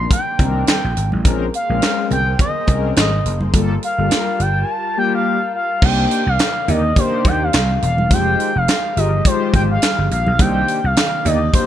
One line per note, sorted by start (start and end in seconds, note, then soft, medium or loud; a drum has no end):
0.00 1.21 C3 medium
0.00 1.21 D#3 medium
0.00 3.50 A#3 medium
0.00 1.21 D4 medium
0.00 0.12 C6 medium
0.11 0.65 G5 medium
0.11 kick loud
0.11 closed hi-hat medium
0.11 muted conga soft
0.39 0.62 C2 medium
0.39 0.80 D#3 medium
0.39 0.80 C4 medium
0.39 0.80 D4 medium
0.39 0.81 A#4 medium
0.39 kick medium
0.39 closed hi-hat medium
0.39 muted conga medium
0.39 low conga medium
0.67 1.10 G5 medium
0.67 snare loud
0.67 clap loud
0.67 closed hi-hat loud
0.67 high conga medium
0.84 0.94 A#1 medium
0.97 1.10 G#1 medium
0.97 closed hi-hat medium
1.12 1.23 A1 medium
1.12 high conga medium
1.25 1.48 A#1 loud
1.25 1.46 G#3 medium
1.25 1.46 C4 medium
1.25 1.46 C#4 medium
1.25 3.51 G#4 medium
1.25 3.51 A#4 medium
1.25 1.46 A#4 loud
1.25 3.51 C5 medium
1.25 kick loud
1.25 closed hi-hat loud
1.25 muted conga soft
1.54 2.08 F5 loud
1.54 closed hi-hat medium
1.69 1.80 A#1 loud
1.69 2.15 G#3 medium
1.69 2.15 C4 medium
1.69 2.15 C#4 medium
1.69 2.15 A#4 medium
1.82 snare loud
1.82 clap medium
1.82 closed hi-hat medium
1.82 high conga medium
2.11 2.34 C2 medium
2.11 2.38 G5 loud
2.11 closed hi-hat medium
2.11 low conga medium
2.39 2.93 D#5 medium
2.39 kick loud
2.39 closed hi-hat medium
2.39 low conga medium
2.67 2.91 C2 medium
2.67 3.09 G#3 medium
2.67 3.09 C4 medium
2.67 3.09 C#4 medium
2.67 3.09 A#4 medium
2.67 kick medium
2.67 closed hi-hat medium
2.67 muted conga medium
2.96 3.20 G#1 loud
2.96 3.39 D#5 medium
2.96 snare loud
2.96 clap loud
2.96 closed hi-hat loud
2.96 high conga medium
3.25 3.48 F#1 medium
3.25 closed hi-hat medium
3.41 high conga medium
3.53 3.77 G1 medium
3.53 5.80 G3 medium
3.53 3.75 G3 medium
3.53 3.75 A#3 medium
3.53 5.80 F4 medium
3.53 3.75 F4 medium
3.53 3.75 A4 loud
3.53 5.80 A#4 medium
3.53 5.80 A5 medium
3.53 kick loud
3.53 closed hi-hat loud
3.53 muted conga soft
3.83 4.43 F5 loud
3.83 closed hi-hat medium
3.98 4.08 G1 loud
3.98 4.43 G3 medium
3.98 4.43 A#3 medium
3.98 4.43 F4 medium
3.98 4.04 A4 medium
4.05 4.47 A#4 medium
4.11 snare loud
4.11 clap medium
4.11 closed hi-hat loud
4.11 high conga medium
4.40 4.63 G1 medium
4.40 4.65 G5 loud
4.40 closed hi-hat medium
4.63 4.72 G#5 medium
4.71 4.98 A5 medium
4.96 5.37 G3 medium
4.96 5.38 A#3 medium
4.96 5.38 F4 medium
4.96 5.38 G4 medium
4.96 5.13 G5 medium
5.15 5.52 F5 loud
5.55 5.86 F5 medium
5.82 6.05 C2 loud
5.82 8.08 C3 medium
5.82 11.66 D#3 medium
5.82 8.08 A#3 medium
5.82 6.23 A#3 medium
5.82 6.23 D4 medium
5.82 6.23 D#4 medium
5.82 6.24 G4 medium
5.82 6.24 C5 medium
5.82 8.08 D5 medium
5.82 6.30 G5 loud
5.82 kick loud
5.82 crash loud
5.82 muted conga medium
6.11 closed hi-hat medium
6.27 6.37 C2 loud
6.27 6.71 F5 medium
6.39 snare loud
6.39 clap loud
6.39 closed hi-hat loud
6.39 high conga medium
6.67 6.91 D#2 medium
6.67 6.81 A#3 medium
6.67 6.82 D4 medium
6.67 6.82 D#4 medium
6.67 6.82 G4 medium
6.67 6.82 A#4 medium
6.67 7.00 D#5 loud
6.67 closed hi-hat medium
6.67 low conga medium
6.96 7.50 A#3 medium
6.96 7.50 D4 medium
6.96 7.50 D#4 medium
6.96 7.50 G4 medium
6.96 7.50 C5 medium
6.96 7.28 C5 medium
6.96 kick loud
6.96 closed hi-hat loud
6.96 low conga medium
7.25 7.48 D#2 loud
7.25 7.45 G5 medium
7.25 kick loud
7.25 closed hi-hat medium
7.25 muted conga medium
7.43 7.83 F5 loud
7.53 7.77 C2 loud
7.53 snare loud
7.53 clap loud
7.53 closed hi-hat loud
7.53 high conga medium
7.82 8.05 E1 loud
7.82 8.14 F5 medium
7.82 closed hi-hat medium
7.98 high conga medium
8.11 8.34 F1 loud
8.11 10.37 F3 medium
8.11 8.52 G#3 medium
8.11 10.37 G#3 medium
8.11 8.52 D#4 medium
8.11 8.52 F4 medium
8.11 10.37 G4 medium
8.11 8.52 G4 medium
8.11 8.52 C5 medium
8.11 8.59 G5 loud
8.11 kick loud
8.11 closed hi-hat loud
8.11 muted conga medium
8.40 closed hi-hat medium
8.56 8.66 F1 loud
8.56 8.99 F5 loud
8.68 snare loud
8.68 clap loud
8.68 closed hi-hat loud
8.68 high conga medium
8.96 9.20 G1 loud
8.96 9.10 G#3 medium
8.96 9.10 D#4 medium
8.96 9.11 F4 medium
8.96 9.11 G4 medium
8.96 9.11 A#4 medium
8.96 9.28 D#5 medium
8.96 closed hi-hat medium
9.25 9.78 G#3 medium
9.25 9.79 D#4 medium
9.25 9.79 F4 medium
9.25 9.79 G4 medium
9.25 9.79 C5 medium
9.25 9.54 C5 medium
9.25 kick loud
9.25 closed hi-hat loud
9.25 muted conga soft
9.54 9.77 G#1 medium
9.54 9.62 G5 medium
9.54 kick loud
9.54 closed hi-hat medium
9.54 muted conga medium
9.54 low conga medium
9.71 10.09 F5 loud
9.82 snare loud
9.82 clap loud
9.82 closed hi-hat loud
9.82 high conga medium
9.98 10.09 G1 medium
10.11 10.24 A#1 loud
10.11 10.42 F5 loud
10.11 closed hi-hat medium
10.26 10.37 B1 medium
10.26 high conga medium
10.39 10.62 C2 loud
10.39 11.66 C3 medium
10.39 11.66 A#3 medium
10.39 10.80 A#3 medium
10.39 10.80 D4 medium
10.39 10.80 D#4 medium
10.39 10.81 G4 medium
10.39 10.81 C5 medium
10.39 11.66 D5 medium
10.39 10.87 G5 loud
10.39 kick loud
10.39 closed hi-hat loud
10.39 muted conga medium
10.68 closed hi-hat medium
10.84 10.94 C2 loud
10.84 11.28 F5 medium
10.97 snare loud
10.97 clap medium
10.97 closed hi-hat loud
10.97 high conga medium
11.25 11.48 D#2 loud
11.25 11.39 A#3 medium
11.25 11.39 D4 medium
11.25 11.39 D#4 medium
11.25 11.39 G4 medium
11.25 11.39 D5 medium
11.25 11.54 D#5 loud
11.25 closed hi-hat medium
11.25 low conga medium
11.53 11.66 A#3 medium
11.53 11.66 D4 medium
11.53 11.66 D#4 medium
11.53 11.66 G4 medium
11.53 11.66 C5 medium
11.53 kick loud
11.53 closed hi-hat loud
11.53 muted conga soft
11.53 low conga medium